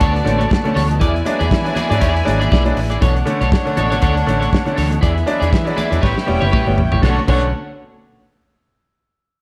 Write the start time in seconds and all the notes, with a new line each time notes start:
Already playing: D3 F#3 A3 B3 D4 F#4 D5 A5
0.00 D2 D4 A4 C#5, kick, closed hi-hat, muted conga
0.14 muted clean electric guitar stroke, closed hi-hat
0.25 A1 D3 A3 C#4, muted clean electric guitar stroke, closed hi-hat, muted conga, high conga
0.38 D4 A4 C#5, closed hi-hat
0.50 muted clean electric guitar stroke, kick, snare, muted conga, high conga
0.64 D3 A3 C#4, muted clean electric guitar stroke, closed hi-hat, high conga
0.75 D2 D4 A4 C#5, snare, open hi-hat, low conga
0.89 B2, muted clean electric guitar stroke, closed hi-hat
1.00 E2 D3 E3 G#3 E4 G#4 D5 G#5, kick, closed hi-hat, low conga
1.14 muted clean electric guitar stroke, closed hi-hat
1.25 F#3 G#3 D4, muted clean electric guitar stroke, closed hi-hat, muted conga, high conga
1.39 E2 G#3 D4 E4 G#4 D5, closed hi-hat
1.50 E3, muted clean electric guitar stroke, kick, snare, muted conga
1.64 F#3 G#3 D4, muted clean electric guitar stroke, closed hi-hat
1.75 E3 E4 G#4 D5, closed hi-hat, muted conga, high conga, low conga
1.89 G#2 F#3 G#3 D4 E4 G#4 D5, closed hi-hat
2.00 E2 E4 G#4 D5, kick, closed hi-hat, muted conga
2.15 muted clean electric guitar stroke, closed hi-hat
2.25 G#1 F#3 G#3 D4, muted clean electric guitar stroke, closed hi-hat, high conga
2.40 E4 G#4 D5, closed hi-hat
2.50 B1 E4 G#4 D5, kick, snare, muted conga, high conga
2.65 F#3 G#3 D4, muted clean electric guitar stroke, closed hi-hat, high conga
2.76 A1, muted clean electric guitar stroke, open hi-hat, low conga
2.90 E3 E4 G#4 D5, closed hi-hat
3.01 B1 B2 D3 F#3 A3 D4 A4 C#5 F#5, kick, closed hi-hat, muted conga, low conga
3.16 muted clean electric guitar stroke, closed hi-hat
3.25 D3 A3 C#4, muted clean electric guitar stroke, closed hi-hat, high conga
3.40 B1 A3 C#4 D4 A4 C#5, closed hi-hat
3.52 muted clean electric guitar stroke, kick, snare, muted conga
3.65 D3 A3 C#4, muted clean electric guitar stroke, closed hi-hat
3.77 A1 B2 D4 A4 C#5, closed hi-hat, muted conga, high conga, low conga
3.90 D3 A3 C#4 D4 A4 C#5, closed hi-hat
4.02 D2 D4 A4 C#5, kick, closed hi-hat
4.15 muted clean electric guitar stroke, closed hi-hat
4.26 A1 D3 A3 C#4, muted clean electric guitar stroke, closed hi-hat, high conga
4.40 D4 A4 C#5, closed hi-hat
4.51 muted clean electric guitar stroke, kick, snare, high conga
4.65 D3 A3 C#4, muted clean electric guitar stroke, closed hi-hat, high conga
4.76 D2 D4 A4 C#5, open hi-hat, muted conga, low conga
4.90 B2, muted clean electric guitar stroke, closed hi-hat
5.01 E2 D3 E3 G#3 B3 E4 G#4 D5 E5, kick, closed hi-hat
5.15 muted clean electric guitar stroke, closed hi-hat
5.26 F#3 G#3 D4, muted clean electric guitar stroke, closed hi-hat, high conga
5.40 E2 G#3 D4 E4 G#4 D5, closed hi-hat
5.51 E3, muted clean electric guitar stroke, kick, snare, muted conga
5.65 F#3 G#3 D4, muted clean electric guitar stroke, closed hi-hat
5.77 E3 E4 G#4 D5, closed hi-hat, muted conga, high conga, low conga
5.90 E2 F#3 G#3 D4 E4 G#4 D5, closed hi-hat
6.01 A1 C#3 G3 A3 B3 E4 G4 B4 C#5 G5, kick, snare
6.16 muted clean electric guitar stroke, snare
6.26 E1 G3 B3 C#4, muted clean electric guitar stroke, muted conga, high conga
6.41 F#1 G4 B4 C#5, high tom
6.51 G4 B4 C#5, kick, mid tom, muted conga, high conga
6.66 G1 G3 B3 C#4, muted clean electric guitar stroke, high conga
6.77 A1, muted clean electric guitar stroke, floor tom, muted conga, low conga
6.92 A1 A2 E3 G4 B4 C#5, floor tom
7.02 B1 D3 A3 B3 C#4 D4 F#4 A4 C#5 F#5, kick, snare, high conga
7.27 B1 D3 A3 C#4 D4 A4 C#5 F#5, kick, crash, high conga